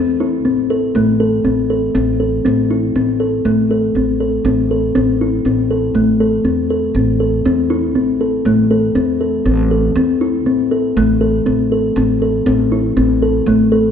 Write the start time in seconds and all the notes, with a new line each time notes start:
Already playing: E2 C4
0.20 E4
0.45 A1 C4
0.70 A4
0.95 A1 A3
1.20 A4
1.44 A1 C4
1.70 A4
1.95 A1 C4
2.20 A4
2.45 A1 C4
2.71 E4
2.95 A1 C4
3.20 A4
3.45 A1 A3
3.71 A4
3.95 A1 C4
4.20 A4
4.44 A1 C4
4.71 A4
4.95 A1 C4
5.21 E4
5.45 A1 C4
5.71 A4
5.95 A1 A3
6.20 A4
6.44 E2 C4
6.70 A4
6.95 A1 C4
7.20 A4
7.45 E2 C4
7.70 E4
7.95 A1 C4
8.21 A4
8.45 A1 A3
8.71 A4
8.95 E2 C4
9.21 A4
9.45 A1 C4
9.71 A4
9.95 E2 C4
10.21 E4
10.46 A1 C4
10.71 A4
10.97 A1 A3
11.21 A4
11.46 A1 C4
11.72 A4
11.96 A1 C4
12.22 A4
12.46 A1 C4
12.72 E4
12.97 A1 C4
13.22 A4
13.46 A1 A3
13.72 A4